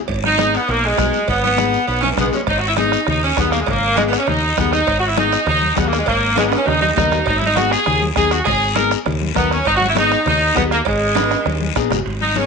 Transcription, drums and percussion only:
0.08 bombo low, cowbell, high conga, long guiro
0.24 bombo rim, high conga
0.38 bombo rim, cowbell, high conga, short guiro
0.54 short guiro
0.68 cowbell, high conga, long guiro
0.98 bombo low, bombo rim, cowbell, high conga, low timbale, short guiro
1.13 short guiro
1.28 bombo low, cowbell, high conga, long guiro
1.44 high conga
1.57 bombo rim, cowbell, high conga, short guiro
1.73 short guiro
1.87 cowbell, high conga, long guiro
2.03 high conga, high timbale
2.13 high timbale
2.17 bombo low, bombo rim, cowbell, high conga, low conga, short guiro
2.33 low timbale, short guiro
2.47 bombo low, bombo rim, cowbell, high conga, long guiro
2.77 bombo rim, cowbell, high conga, short guiro
2.92 bombo rim, short guiro
3.07 bombo rim, cowbell, high conga, low conga, long guiro
3.37 bombo low, bombo rim, cowbell, high conga, short guiro
3.52 bombo rim, short guiro
3.66 bombo low, bombo rim, cowbell, high conga, low conga, long guiro
3.97 bombo rim, cowbell, high conga, short guiro
4.13 bombo rim, short guiro
4.27 bombo rim, cowbell, high conga, low conga, long guiro
4.57 bombo low, bombo rim, cowbell, high conga, low conga, short guiro
4.72 bombo rim, short guiro
4.87 bombo low, bombo rim, cowbell, long guiro
5.17 bombo rim, cowbell, high conga, short guiro
5.32 bombo rim, short guiro
5.46 bombo rim, cowbell, high conga, low conga, long guiro
5.62 high conga
5.76 bombo low, bombo rim, cowbell, high conga, low timbale, short guiro
5.93 bombo rim, short guiro
6.06 bombo low, bombo rim, cowbell, high conga, long guiro
6.36 bombo rim, cowbell, high conga, high timbale, short guiro
6.52 bombo rim, high timbale, short guiro
6.66 bombo rim, cowbell, high conga, low conga, low timbale, long guiro
6.81 high conga, low timbale
6.96 bombo low, bombo rim, cowbell, high conga, low conga, low timbale, short guiro
7.12 bombo rim, low timbale, short guiro
7.26 bombo low, bombo rim, cowbell, high conga, long guiro
7.42 high conga
7.56 bombo rim, cowbell, high conga, short guiro
7.71 bombo rim, short guiro
7.86 bombo rim, cowbell, high conga, low conga, long guiro
8.02 high conga
8.16 bombo low, bombo rim, cowbell, high conga, short guiro
8.31 bombo rim, short guiro
8.45 bombo low, bombo rim, cowbell, high conga, low conga, long guiro
8.76 bombo rim, cowbell, high conga, short guiro
8.91 bombo rim, short guiro
9.06 bombo rim, cowbell, high conga, low conga, long guiro
9.21 high conga
9.35 bombo low, bombo rim, cowbell, high conga, short guiro
9.51 bombo rim, short guiro
9.65 bombo low, bombo rim, cowbell, high conga, long guiro
9.81 high conga
9.96 bombo rim, cowbell, high conga, short guiro
10.11 bombo rim, short guiro
10.26 bombo rim, cowbell, high conga, low conga, long guiro
10.56 bombo low, bombo rim, cowbell, high conga, low timbale, short guiro
10.71 bombo rim, short guiro
10.85 bombo low, bombo rim, cowbell, high conga, long guiro
11.15 bombo rim, cowbell, high conga, high timbale, short guiro
11.31 bombo rim, high timbale, short guiro
11.45 bombo rim, cowbell, high conga, long guiro
11.61 high conga
11.76 bombo low, bombo rim, cowbell, short guiro
11.90 bombo rim, low conga, low timbale, short guiro
12.06 high conga, high timbale, long guiro
12.21 high conga
12.35 high conga, high timbale, short guiro

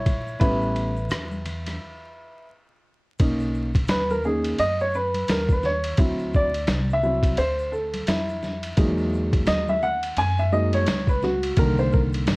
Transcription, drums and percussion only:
0.06 kick, ride, high conga, low conga, shaker
0.27 shaker
0.41 kick, ride, shaker
0.62 shaker
0.76 ride, shaker
0.96 shaker
1.09 cross-stick, hi-hat pedal, ride, low conga, shaker
1.31 high conga, shaker
1.46 ride, low conga, shaker
1.67 cross-stick, ride, high conga, shaker
3.19 kick, ride, shaker
3.40 shaker
3.55 shaker
3.74 kick, ride, shaker
3.88 snare, hi-hat pedal, ride, low conga, shaker
4.10 high conga, shaker
4.24 low conga, shaker
4.44 ride, shaker
4.58 ride, shaker
4.80 shaker
4.94 shaker
5.14 ride, high conga, shaker
5.27 snare, hi-hat pedal, ride, shaker
5.49 kick, shaker
5.63 snare, high conga, low conga, shaker
5.84 ride, shaker
5.98 kick, ride, shaker
6.19 shaker
6.34 kick, shaker
6.54 ride, shaker
6.67 snare, hi-hat pedal, ride, low conga, shaker
6.90 high conga, shaker
7.03 low conga, shaker
7.23 kick, ride, shaker
7.37 ride, shaker
7.59 shaker
7.73 shaker
7.94 ride, high conga, shaker
8.07 snare, hi-hat pedal, ride, shaker
8.29 shaker
8.43 snare, high conga, low conga, shaker
8.63 ride, shaker
8.77 kick, ride, shaker
8.98 shaker
9.13 shaker
9.32 kick, ride, shaker
9.46 snare, hi-hat pedal, ride, low conga, shaker
9.68 high conga, shaker
9.82 low conga, shaker
10.03 ride, shaker
10.16 ride, shaker
10.38 shaker
10.53 shaker
10.73 ride, high conga, shaker
10.86 snare, hi-hat pedal, ride, shaker
11.07 kick, shaker
11.22 snare, high conga, low conga, shaker
11.43 ride, shaker
11.56 kick, ride, shaker
11.78 shaker
11.92 kick, shaker
12.13 ride, shaker
12.26 snare, hi-hat pedal, ride, low conga, shaker

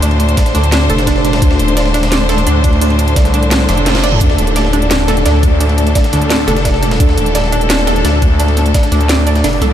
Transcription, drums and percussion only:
0.02 closed hi-hat, ride
0.11 ride
0.20 closed hi-hat, ride
0.29 closed hi-hat, ride
0.37 kick, snare, closed hi-hat, ride
0.46 snare, closed hi-hat
0.55 snare, closed hi-hat, ride
0.63 closed hi-hat
0.72 snare, closed hi-hat, ride
0.90 closed hi-hat, ride
0.98 snare, closed hi-hat
1.07 kick, snare, closed hi-hat, ride
1.16 snare
1.25 snare, closed hi-hat, ride
1.33 snare, ride
1.42 kick, closed hi-hat, ride
1.51 snare
1.59 closed hi-hat, ride
1.68 closed hi-hat
1.77 snare, closed hi-hat, ride
1.86 snare
1.94 snare, closed hi-hat, ride
2.03 snare, closed hi-hat, ride
2.12 snare, closed hi-hat, ride
2.20 ride
2.29 snare, closed hi-hat, ride
2.38 snare, closed hi-hat
2.47 closed hi-hat, ride
2.64 kick, closed hi-hat, ride
2.73 ride
2.82 closed hi-hat, ride
2.90 ride
2.99 closed hi-hat, ride
3.08 closed hi-hat, ride
3.16 kick, snare, closed hi-hat, ride
3.25 snare, closed hi-hat
3.34 closed hi-hat, ride
3.43 closed hi-hat
3.51 snare, closed hi-hat, ride
3.60 snare
3.69 snare, closed hi-hat, ride
3.77 closed hi-hat
3.86 snare, closed hi-hat, ride
3.95 snare, ride
4.04 snare, closed hi-hat, ride
4.12 mid tom
4.21 kick, closed hi-hat, ride
4.30 snare
4.38 closed hi-hat, ride
4.47 closed hi-hat
4.56 snare, closed hi-hat, ride
4.65 snare
4.73 closed hi-hat, ride
4.82 closed hi-hat
4.91 snare, closed hi-hat, ride
5.00 ride
5.08 snare, closed hi-hat, ride
5.17 closed hi-hat
5.26 snare, closed hi-hat, ride
5.43 kick, closed hi-hat, ride
5.61 closed hi-hat, ride
5.69 ride
5.78 closed hi-hat, ride
5.87 closed hi-hat, ride
5.95 kick, snare, closed hi-hat, ride
6.04 snare, closed hi-hat
6.13 snare, closed hi-hat, ride
6.22 closed hi-hat
6.30 snare, closed hi-hat, ride
6.48 snare, closed hi-hat, ride
6.56 snare, closed hi-hat
6.65 kick, snare, closed hi-hat, ride
6.74 snare
6.83 snare, closed hi-hat, ride
6.91 snare, ride
7.00 kick, closed hi-hat, ride
7.09 snare
7.18 closed hi-hat, ride
7.26 closed hi-hat
7.35 snare, closed hi-hat, ride
7.44 snare
7.52 closed hi-hat, ride
7.61 closed hi-hat
7.70 snare, closed hi-hat, ride
7.79 ride
7.87 snare, closed hi-hat, ride
7.96 closed hi-hat
8.05 snare, closed hi-hat, ride
8.22 kick, closed hi-hat, ride
8.40 closed hi-hat, ride
8.48 ride
8.57 snare, closed hi-hat, ride
8.66 closed hi-hat, ride
8.74 kick, snare, closed hi-hat, ride
8.83 snare, closed hi-hat
8.92 snare, closed hi-hat, ride
9.01 closed hi-hat
9.09 snare, closed hi-hat, ride
9.27 closed hi-hat, ride
9.35 snare, closed hi-hat
9.44 snare, closed hi-hat, open hi-hat
9.53 ride
9.62 snare, closed hi-hat, ride

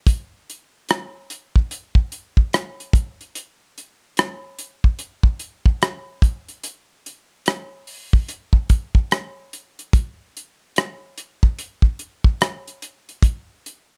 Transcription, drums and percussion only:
0.07 kick, closed hi-hat
0.50 closed hi-hat
0.89 cross-stick, closed hi-hat
1.30 closed hi-hat
1.56 kick
1.71 closed hi-hat
1.95 kick
2.12 closed hi-hat
2.37 kick
2.53 cross-stick, closed hi-hat
2.80 closed hi-hat
2.93 kick, closed hi-hat
3.21 closed hi-hat
3.35 closed hi-hat
3.78 closed hi-hat
4.17 cross-stick, closed hi-hat
4.59 closed hi-hat
4.84 kick
4.99 closed hi-hat
5.23 kick
5.39 closed hi-hat
5.66 kick
5.82 cross-stick, closed hi-hat
6.22 kick, closed hi-hat
6.49 closed hi-hat
6.63 closed hi-hat
7.06 closed hi-hat
7.46 cross-stick, closed hi-hat
7.87 open hi-hat
8.13 kick
8.29 closed hi-hat
8.53 kick
8.69 kick, closed hi-hat
8.95 kick
9.11 cross-stick, closed hi-hat
9.53 closed hi-hat
9.79 closed hi-hat
9.93 kick, closed hi-hat
10.37 closed hi-hat
10.76 cross-stick, closed hi-hat
11.18 closed hi-hat
11.43 kick
11.59 closed hi-hat
11.82 kick
11.99 closed hi-hat
12.24 kick
12.41 cross-stick, closed hi-hat
12.68 closed hi-hat
12.82 closed hi-hat
13.09 closed hi-hat
13.23 kick, closed hi-hat
13.66 closed hi-hat

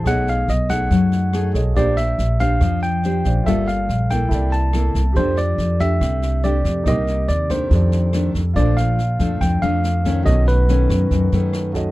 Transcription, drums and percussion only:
0.05 kick, cross-stick, snare
0.27 snare
0.48 snare
0.69 kick, cross-stick, snare
0.90 kick, snare
1.12 snare
1.33 cross-stick, snare
1.54 kick, snare
1.76 kick, snare
1.97 cross-stick, snare
2.18 snare
2.39 kick, snare
2.61 kick, cross-stick, snare
2.82 snare
3.03 snare
3.25 kick, snare
3.46 kick, cross-stick, snare
3.68 snare
3.89 snare
4.10 kick, cross-stick, snare
4.31 kick, snare
4.52 snare
4.73 cross-stick, snare
4.95 kick, snare
5.16 kick, snare
5.37 cross-stick, snare
5.58 snare
5.80 kick, snare
6.01 kick, cross-stick, snare
6.22 snare
6.43 snare
6.65 kick, snare
6.86 kick, cross-stick, snare
7.07 snare
7.28 snare
7.50 kick, cross-stick, snare
7.71 kick, snare
7.92 snare
8.13 cross-stick, snare
8.35 kick, snare
8.56 kick, snare
8.77 cross-stick, snare
8.98 snare
9.20 kick, snare
9.41 kick, cross-stick, snare
9.62 snare
9.84 snare
10.05 kick, snare
10.26 kick, cross-stick, snare
10.47 snare
10.68 snare
10.90 kick, cross-stick, snare
11.11 kick, snare
11.32 snare
11.53 cross-stick, snare
11.75 kick, snare

